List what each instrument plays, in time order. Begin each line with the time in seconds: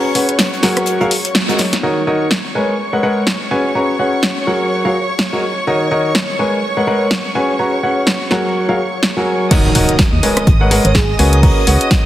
Already playing: violin section C#5 C#6
0.15 grand piano C#4 F#4 G#4 B4 C#5 F#5, closed hi-hat, open hi-hat
0.29 closed hi-hat
0.39 snare, closed hi-hat
0.53 closed hi-hat
0.63 grand piano F#3 F#4 G#4 A#4 C#5 F#5, snare, closed hi-hat, open hi-hat
0.77 cross-stick, closed hi-hat
0.86 closed hi-hat
0.87 closed hi-hat
1.00 grand piano F#3 F#4 G#4 A#4 C#5 F5, closed hi-hat
1.11 closed hi-hat, open hi-hat
1.25 closed hi-hat
1.35 snare, closed hi-hat
1.49 grand piano F#3 F#4 G#4 A#4 C#5 D#5, closed hi-hat
1.58 snare, closed hi-hat, open hi-hat
1.73 snare, closed hi-hat
1.83 grand piano D#3 D#4 F#4 A#4 C#5 D#5, violin section C#5 C#6
2.07 grand piano D#3 D#4 F#4 A#4 C#5 D#5
2.31 snare
2.55 grand piano G#3 G#4 A#4 B4 C#5 G#5
2.93 grand piano G#3 G#4 A#4 B4 C#5 F#5
3.03 grand piano G#3 G#4 A#4 B4 C#5 F#5
3.27 snare
3.51 grand piano C#4 F#4 G#4 B4 C#5 G#5
3.75 grand piano C#4 F#4 G#4 B4 C#5 A#5
3.99 grand piano C#4 F#4 G#4 B4 C#5 F#5
4.23 snare
4.47 grand piano F#3 F#4 G#4 A#4 C#5 F#5
4.85 grand piano F#3 F#4 G#4 A#4 C#5 F5
5.19 snare
5.33 grand piano F#3 F#4 G#4 A#4 C#5 D#5
5.67 grand piano D#3 D#4 F#4 A#4 C#5 D#5
5.91 grand piano D#3 D#4 F#4 A#4 C#5 D#5
6.15 snare
6.39 grand piano G#3 G#4 A#4 B4 C#5 G#5
6.77 grand piano G#3 G#4 A#4 B4 C#5 F#5
6.87 grand piano G#3 G#4 A#4 B4 C#5 F#5
7.11 snare
7.35 grand piano C#4 F#4 G#4 B4 C#5 G#5
7.59 grand piano C#4 F#4 G#4 B4 C#5 A#5
7.83 grand piano C#4 F#4 G#4 B4 C#5 F#5
8.07 snare
8.31 grand piano F#3 F#4 G#4 A#4 C#5 F#5, snare
8.69 grand piano F#3 F#4 G#4 A#4 C#5 F5
9.03 snare
9.17 grand piano F#3 F#4 G#4 A#4 C#5 G#5
9.51 grand piano D#3 F#4 A#4 C#5 D#5 F#5, violin section D#5 D#6, kick, closed hi-hat, crash, impact
9.65 closed hi-hat
9.75 fm bass D#1, grand piano D#3 F#4 A#4 C#5 D#5 F#5, closed hi-hat, open hi-hat
9.89 closed hi-hat
9.99 kick, snare, closed hi-hat
10.13 fm bass D#2
10.23 grand piano G#3 G#4 A#4 B4 C#5 G#5, closed hi-hat, open hi-hat
10.37 cross-stick, closed hi-hat
10.47 fm bass G#1, kick, closed hi-hat
10.61 grand piano G#3 G#4 A#4 B4 C#5 F#5
10.71 grand piano G#3 G#4 A#4 B4 C#5 F#5, closed hi-hat, open hi-hat
10.85 fm bass G#1, digital synth lead C#5, closed hi-hat
10.95 digital synth lead G#4, kick, snare, closed hi-hat
11.19 fm bass C#2, grand piano C#4 F#4 G#4 B4 C#5 G#5, digital synth lead A#4, closed hi-hat, open hi-hat
11.33 closed hi-hat
11.43 grand piano C#4 F#4 G#4 B4 C#5 A#5, kick, closed hi-hat, open hi-hat
11.66 fm bass C#2, grand piano C#4 F#4 G#4 B4 C#5 F#5, closed hi-hat, open hi-hat
11.81 closed hi-hat
11.91 kick, snare, closed hi-hat